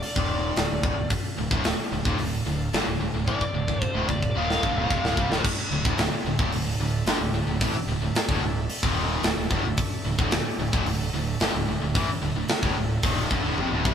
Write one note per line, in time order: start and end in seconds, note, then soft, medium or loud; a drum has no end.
0.00 5.41 D4 medium
0.00 5.42 A4 medium
0.00 1.08 D5 loud
0.00 5.41 F5 medium
0.00 open hi-hat medium
0.16 0.54 D#1 medium
0.16 0.56 D#2 medium
0.16 0.57 A#2 medium
0.16 0.57 D#3 loud
0.16 kick loud
0.56 0.69 D1 medium
0.56 0.70 D2 medium
0.56 0.71 A2 medium
0.56 snare loud
0.56 open hi-hat medium
0.70 0.82 D1 medium
0.70 0.83 D2 medium
0.70 0.84 A2 medium
0.83 0.96 D1 loud
0.83 0.96 D2 medium
0.83 0.96 A2 medium
0.83 kick loud
0.97 1.10 D1 medium
0.97 1.09 D2 medium
0.97 1.11 A2 medium
1.10 muted distorted electric guitar stroke medium
1.10 muted fingered electric bass stroke soft
1.10 muted overdriven electric guitar stroke medium
1.10 kick loud
1.10 open hi-hat medium
1.38 1.50 D1 medium
1.38 1.51 D2 medium
1.38 1.51 A2 medium
1.51 1.64 D1 loud
1.51 1.65 D2 medium
1.51 1.65 A2 loud
1.51 kick loud
1.64 1.78 D1 medium
1.64 1.79 D2 medium
1.64 1.79 A2 medium
1.64 snare loud
1.64 open hi-hat medium
1.79 muted distorted electric guitar stroke medium
1.79 muted fingered electric bass stroke soft
1.79 muted overdriven electric guitar stroke medium
1.92 2.05 D1 medium
1.92 2.06 D2 medium
1.92 2.06 A2 medium
2.05 2.18 D#1 loud
2.05 2.19 D#2 medium
2.05 2.19 A#2 medium
2.05 kick loud
2.19 2.45 D1 medium
2.19 2.41 D2 medium
2.19 2.42 A2 medium
2.19 open hi-hat medium
2.46 2.71 D1 medium
2.46 2.68 D2 medium
2.46 2.68 A2 medium
2.73 2.86 G1 loud
2.73 2.86 G2 medium
2.73 2.87 D3 loud
2.73 snare loud
2.73 open hi-hat medium
2.86 2.99 D1 medium
2.86 3.00 D2 medium
2.86 3.00 A2 medium
3.00 3.13 D1 medium
3.00 3.13 D2 medium
3.00 3.13 A2 medium
3.14 3.27 D1 medium
3.14 3.26 D2 medium
3.14 3.25 A2 medium
3.26 3.40 A1 medium
3.26 3.40 A2 medium
3.26 3.40 E3 loud
3.26 3.81 D5 loud
3.26 kick medium
3.41 muted fingered electric bass stroke soft
3.41 muted distorted electric guitar stroke medium
3.41 muted overdriven electric guitar stroke medium
3.41 kick medium
3.54 3.67 D1 medium
3.54 3.68 D2 medium
3.54 3.68 A2 medium
3.68 3.81 D1 medium
3.68 3.81 D2 medium
3.68 3.82 A2 medium
3.68 kick medium
3.81 4.08 C5 medium
3.81 muted distorted electric guitar stroke medium
3.81 muted fingered electric bass stroke soft
3.81 muted overdriven electric guitar stroke medium
3.81 kick medium
3.95 4.08 D1 medium
3.95 4.08 D2 medium
3.95 4.08 A2 loud
4.09 4.34 D1 medium
4.09 4.31 D2 medium
4.09 4.31 A2 medium
4.09 4.36 D5 loud
4.09 kick medium
4.23 kick medium
4.35 4.61 D#1 medium
4.35 4.63 D#2 loud
4.35 4.63 A#2 loud
4.35 4.64 D#3 loud
4.35 5.42 F5 loud
4.50 snare medium
4.63 4.75 G1 loud
4.63 4.76 G2 medium
4.63 4.77 D3 medium
4.63 kick medium
4.76 4.89 D1 loud
4.76 4.90 D2 medium
4.76 4.91 A2 loud
4.90 5.02 F1 medium
4.90 5.03 F2 medium
4.90 5.04 C3 loud
4.90 kick loud
5.03 5.16 D1 medium
5.03 5.17 D2 medium
5.03 5.18 A2 loud
5.03 snare medium
5.17 5.29 C2 medium
5.17 5.31 C3 medium
5.17 5.32 G3 loud
5.17 kick loud
5.30 5.43 D1 medium
5.30 5.45 D2 medium
5.30 5.45 A2 loud
5.30 snare medium
5.44 13.94 D4 medium
5.44 13.94 A4 medium
5.44 13.94 E5 medium
5.44 muted fingered electric bass stroke soft
5.44 muted distorted electric guitar stroke medium
5.44 muted overdriven electric guitar stroke medium
5.44 kick loud
5.44 crash loud
5.71 5.84 D1 medium
5.71 5.85 D2 medium
5.71 5.86 A2 medium
5.85 5.97 D1 loud
5.85 5.99 D2 loud
5.85 5.99 A2 loud
5.85 kick loud
5.97 6.11 D1 medium
5.97 6.13 D2 medium
5.97 6.13 A2 medium
5.97 snare loud
5.97 open hi-hat medium
6.12 muted fingered electric bass stroke soft
6.12 muted distorted electric guitar stroke medium
6.12 muted overdriven electric guitar stroke medium
6.25 6.38 D1 medium
6.25 6.39 D2 medium
6.25 6.40 A2 medium
6.39 6.51 D#1 medium
6.39 6.53 D#2 medium
6.39 6.53 A#2 loud
6.39 kick loud
6.52 6.77 D1 medium
6.52 6.75 D2 medium
6.52 6.75 A2 medium
6.52 open hi-hat medium
6.78 7.04 D1 medium
6.78 7.03 D2 medium
6.78 7.03 A2 medium
7.06 7.18 G1 loud
7.06 7.20 G2 medium
7.06 7.21 D3 loud
7.06 snare loud
7.06 open hi-hat medium
7.19 7.32 D1 medium
7.19 7.34 D2 medium
7.19 7.34 A2 medium
7.33 7.46 D1 medium
7.33 7.48 D2 medium
7.33 7.49 A2 medium
7.46 7.60 D1 medium
7.46 7.62 D2 medium
7.46 7.62 A2 medium
7.61 7.73 A1 loud
7.61 7.75 A2 loud
7.61 7.76 E3 loud
7.61 kick loud
7.61 open hi-hat medium
7.74 muted fingered electric bass stroke soft
7.74 muted distorted electric guitar stroke medium
7.74 muted overdriven electric guitar stroke medium
7.87 7.99 D1 medium
7.91 8.03 D2 medium
7.91 8.04 A2 medium
8.00 8.14 D1 medium
8.04 8.17 D2 medium
8.04 8.17 A2 medium
8.14 muted fingered electric bass stroke soft
8.14 muted distorted electric guitar stroke medium
8.14 snare loud
8.14 open hi-hat medium
8.18 muted overdriven electric guitar stroke medium
8.29 8.40 D1 medium
8.29 8.43 D2 loud
8.29 8.44 A2 loud
8.29 kick loud
8.40 8.67 D1 medium
8.45 8.65 D2 medium
8.45 8.66 A2 medium
8.70 open hi-hat medium
8.83 9.21 D#1 loud
8.83 9.24 D#2 loud
8.83 9.24 A#2 medium
8.83 9.25 D#3 loud
8.83 kick loud
9.23 9.36 D1 medium
9.23 9.38 D2 medium
9.23 9.39 A2 medium
9.23 snare loud
9.23 open hi-hat medium
9.37 9.50 D1 medium
9.37 9.52 D2 medium
9.37 9.52 A2 medium
9.51 9.63 D1 loud
9.51 9.65 D2 loud
9.51 9.65 A2 loud
9.51 kick loud
9.64 9.77 D1 medium
9.64 9.79 D2 medium
9.64 9.79 A2 medium
9.77 muted fingered electric bass stroke soft
9.77 muted distorted electric guitar stroke medium
9.77 muted overdriven electric guitar stroke medium
9.77 kick loud
9.77 open hi-hat medium
10.04 10.18 D1 medium
10.04 10.18 D2 medium
10.04 10.20 A2 medium
10.18 10.31 D1 loud
10.18 10.32 D2 medium
10.18 10.33 A2 loud
10.18 kick loud
10.31 10.44 D1 medium
10.31 10.46 D2 medium
10.31 10.47 A2 medium
10.31 snare loud
10.31 open hi-hat medium
10.45 muted fingered electric bass stroke soft
10.45 muted distorted electric guitar stroke medium
10.45 muted overdriven electric guitar stroke medium
10.58 10.72 D1 medium
10.58 10.74 D2 medium
10.58 10.74 A2 medium
10.73 10.85 D#1 medium
10.73 10.87 D#2 medium
10.73 10.87 A#2 loud
10.73 kick loud
10.86 11.12 D1 medium
10.86 11.09 D2 medium
10.86 11.09 A2 medium
10.86 open hi-hat medium
11.13 11.39 D1 medium
11.13 11.36 D2 medium
11.13 11.36 A2 medium
11.40 11.53 G1 medium
11.40 11.54 G2 medium
11.40 11.55 D3 loud
11.40 snare loud
11.40 open hi-hat medium
11.54 11.67 D1 medium
11.54 11.68 D2 medium
11.54 11.68 A2 medium
11.68 11.81 D1 medium
11.68 11.81 D2 medium
11.68 11.81 A2 medium
11.81 11.94 D1 medium
11.81 11.95 D2 medium
11.81 11.94 A2 medium
11.95 12.08 A1 medium
11.95 12.08 A2 loud
11.95 12.08 E3 loud
11.95 kick loud
11.95 open hi-hat medium
12.08 muted fingered electric bass stroke soft
12.08 muted distorted electric guitar stroke medium
12.08 muted overdriven electric guitar stroke medium
12.22 12.35 D1 medium
12.22 12.35 D2 medium
12.22 12.35 A2 medium
12.36 12.48 D1 medium
12.36 12.49 D2 medium
12.36 12.50 A2 medium
12.48 muted fingered electric bass stroke soft
12.48 muted distorted electric guitar stroke medium
12.48 muted overdriven electric guitar stroke medium
12.48 snare loud
12.48 open hi-hat medium
12.63 12.76 D1 loud
12.63 12.76 D2 medium
12.63 12.77 A2 loud
12.63 kick loud
12.76 13.02 D1 medium
12.76 12.99 D2 medium
12.76 12.99 A2 medium
13.03 13.29 D#1 medium
13.03 13.30 D#2 medium
13.03 13.31 A#2 loud
13.03 13.31 D#3 loud
13.03 kick loud
13.03 open hi-hat medium
13.31 13.43 G1 loud
13.31 13.44 G2 medium
13.31 13.45 D3 loud
13.31 kick loud
13.44 13.56 D1 medium
13.44 13.58 D2 medium
13.44 13.58 A2 medium
13.57 13.70 F1 medium
13.57 13.71 F2 loud
13.57 13.72 C3 loud
13.57 high tom medium
13.70 13.84 D1 medium
13.70 13.85 D2 medium
13.70 13.86 A2 loud
13.85 13.94 C2 loud
13.85 13.94 C3 medium
13.85 13.94 G3 loud
13.85 kick loud